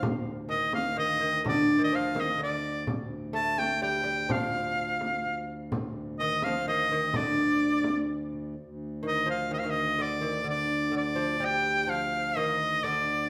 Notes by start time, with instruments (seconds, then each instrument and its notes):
Already playing: harmonium D2
0.03 frame drum
0.49 lute D#3, shawm D#5, frame drum
0.73 shawm F5, frame drum
0.97 lute D#3, shawm D#5, frame drum
1.20 lute D#3
1.44 lute D3, shawm D5, frame drum
1.79 lute D#3
1.84 shawm D#5
1.92 lute F3, shawm F5
2.14 lute D#3, frame drum
2.20 shawm D#5
2.38 lute D3
2.43 shawm D5
2.87 harmonium D2, frame drum
3.33 lute A3, shawm A5, frame drum
3.58 shawm G5, frame drum
3.82 lute G3, shawm G5, frame drum
4.04 lute G3
4.29 lute F3, shawm F5, frame drum
4.77 frame drum
5.01 frame drum
5.25 frame drum
5.72 frame drum
6.19 lute D#3, shawm D#5, frame drum
6.42 lute F3, shawm F5, frame drum
6.66 lute D#3, shawm D#5, frame drum
6.92 lute D#3
7.14 lute D3, shawm D5, frame drum
7.61 frame drum
7.84 frame drum
8.33 frame drum
8.56 harmonium D2
9.03 lute D#3
9.07 shawm D#5
9.26 lute F3
9.30 shawm F5
9.51 lute D#3, shawm D#5
9.58 shawm F5
9.63 lute D#3
9.70 shawm D#5
9.98 lute D3, shawm D5
10.21 lute D#3
10.44 lute D3
10.49 shawm D5
10.92 lute D3
10.96 shawm D5
11.15 lute F3
11.40 lute G3
11.45 shawm G5
11.87 lute F3, shawm F5
12.36 lute D#3, shawm D#5
12.83 lute D3, shawm D5